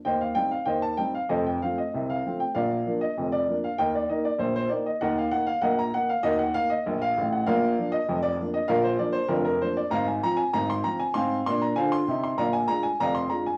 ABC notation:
X:1
M:2/4
L:1/16
Q:1/4=97
K:Bb
V:1 name="Upright piano"
[ceg] f g f [ceg] a g f | [Ace] g f e2 f2 g | [Bdf]3 e2 d2 f | [Beg] d e d c c d e |
[Be_g] f g f [Beg] b g f | [_GBe] _g f e2 f2 g | [Bdf]3 e2 d2 e | [Bdf] c d c [DFB] B c d |
[K:Fdor] [fb] a b a b c' b a | [fac']2 c' b [cfa] c'2 c' | [dfb] a b a [dfb] c' b a |]
V:2 name="Upright piano" clef=bass
[E,,E,]2 [G,CE]2 [E,,E,]2 [G,CE]2 | [F,,,F,,]2 [F,A,C]2 [C,,C,]2 [F,A,C]2 | [B,,,B,,]2 [F,B,D]2 [F,,,F,,]2 [F,B,D]2 | [E,,E,]2 [E,B,E]2 [B,,,B,,]2 [E,B,E]2 |
[E,,E,]2 [E,B,E]2 [B,,,B,,]2 [E,B,E]2 | [E,,E,]2 [E,B,E]2 [B,,,B,,]2 [A,,,A,,]2 | [B,,,B,,]2 [F,B,D]2 [F,,,F,,]2 [F,B,D]2 | [B,,,B,,]2 [F,B,D]2 [F,,,F,,]2 [F,B,D]2 |
[K:Fdor] [A,,,A,,]2 [F,CF]2 [A,,,A,,]2 [F,CF]2 | [A,,C]2 [B,,D]2 [D,F]2 [C,E]2 | [B,,,B,,]2 [A,DF]2 [F,,,F,,]2 [A,DF]2 |]